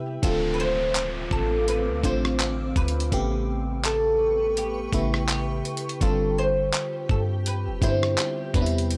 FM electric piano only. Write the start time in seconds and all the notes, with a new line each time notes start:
Already playing: C3 G3 B3 E4
0.22 D3 A3 C4 F4
2.03 D3 A3 C4 F4
3.12 C#3 A3 B3 G4
4.92 C#3 A3 B3 E4
6.00 D3 G3 C4 F4
7.81 D3 G3 B3 E4
7.89 C4
8.53 C3 G3 B3 D4
8.62 E4